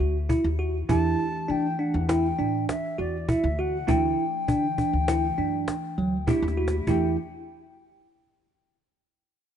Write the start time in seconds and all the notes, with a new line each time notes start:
Already playing: A3 D4 E4 G4
0.00 D2 F#4
0.29 E4, cajon bass
0.44 D#2
0.59 F#4, cajon slap
0.89 E2 E3 A3 D4 E4 G4 A5, cajon bass
1.20 cajon slap
1.48 E3 D4 G5, cajon slap
1.79 D4 F#5, cajon slap
1.94 E2
2.09 E4 G5, cajon slap
2.39 A2 D4, cajon slap
2.69 E5, cajon slap
2.98 E2 F#4 D5, cajon slap
3.28 E4 E5, cajon bass
3.44 D2
3.59 F#4 F#5, cajon slap
3.87 D2 E3 A3 D4 E4 G5, cajon bass
4.19 cajon slap
4.48 D3 D4, cajon bass
4.78 D4, cajon bass
4.93 D2
5.08 E4, cajon slap
5.38 F#2 D4, cajon slap
5.68 cajon slap
5.98 D2 F#3, cajon slap
6.27 A3 D4 E4 G4, cajon bass, cajon slap
6.42 D#2
6.48 cajon slap
6.57 F#4, cajon slap
6.68 cajon slap
6.87 E2 E3 A3 D4 E4 G4 G5, cajon bass